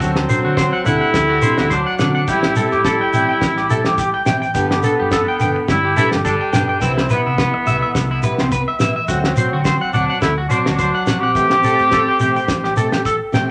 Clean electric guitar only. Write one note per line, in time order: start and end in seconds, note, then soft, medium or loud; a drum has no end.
0.00 0.10 F#4 medium
0.16 muted clean electric guitar stroke medium
0.29 0.39 C5 medium
0.45 0.53 F#4 medium
0.57 0.67 C5 medium
0.73 0.81 F#5 medium
0.86 0.96 F#5 medium
1.01 1.09 F#5 medium
1.30 1.38 F#4 medium
1.42 1.52 C5 medium
1.58 1.66 F#4 medium
1.70 1.80 C5 medium
1.86 1.95 F#5 medium
1.99 2.09 F#5 medium
2.15 2.23 F#5 medium
2.28 2.38 G4 medium
2.44 2.52 G4 medium
2.57 2.66 A4 medium
2.72 2.80 G4 medium
2.85 2.95 A4 medium
3.01 3.09 G5 medium
3.14 3.23 G5 medium
3.29 3.37 G5 medium
3.57 3.65 G4 medium
3.70 3.80 A4 medium
3.86 3.94 G4 medium
3.99 4.09 G4 medium
4.14 4.22 G5 medium
4.26 4.36 G5 medium
4.42 4.50 G5 medium
4.55 4.65 G4 medium
4.71 4.79 G4 medium
4.84 4.93 A4 medium
5.00 5.07 G4 medium
5.13 5.22 A4 medium
5.28 5.36 G5 medium
5.41 5.50 G5 medium
5.56 muted clean electric guitar stroke medium
5.85 5.92 G4 medium
5.97 6.07 A4 medium
6.12 6.20 G4 medium
6.25 6.34 A4 medium
6.41 6.49 G5 medium
6.53 6.63 G5 medium
6.69 6.77 G5 medium
6.82 6.91 E4 medium
6.98 7.06 E4 medium
7.10 7.20 B4 medium
7.26 7.34 E4 medium
7.38 7.48 B4 medium
7.54 muted clean electric guitar stroke medium
7.67 7.76 E5 medium
7.82 7.90 E5 medium
8.11 8.19 E4 medium
8.24 8.33 B4 medium
8.40 8.47 C4 medium
8.52 8.62 B4 medium
8.68 8.76 E5 medium
8.81 8.90 E5 medium
8.96 9.04 E5 medium
9.08 9.18 F#4 medium
9.25 9.33 F#4 medium
9.38 9.47 C5 medium
9.53 9.61 F#4 medium
9.66 9.75 C5 medium
9.81 9.89 F#5 medium
9.94 10.04 F#5 medium
10.10 10.17 F#5 medium
10.38 10.46 F#4 medium
10.51 10.60 C5 medium
10.66 10.74 F#4 medium
10.79 10.89 C5 medium
10.95 11.02 F#5 medium
11.07 11.17 F#5 medium
11.23 11.31 F#5 medium
11.36 11.45 G4 medium
11.51 11.59 G4 medium
11.64 11.74 A4 medium
11.80 11.87 G4 medium
11.93 12.02 A4 medium
12.08 12.16 G5 medium
12.21 12.30 G5 medium
12.36 12.44 G5 medium
12.64 12.72 G4 medium
12.77 12.87 A4 medium
12.92 13.00 G4 medium
13.06 13.15 A4 medium
13.34 13.44 G5 medium